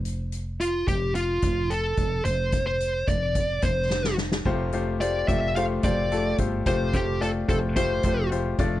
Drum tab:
CC |----------------|----------------|x---------------|----------------|
HH |x-x-x-x-x-x-x-x-|x-x-x-x-x-x-----|--x-x-x-x-x-x-x-|x-x-x-x-x-x-x-x-|
SD |----------------|------------oooo|----------------|----------------|
BD |------o---o---o-|--o---o-o-o-----|o-----o---o---o-|o-o---o-o-o---o-|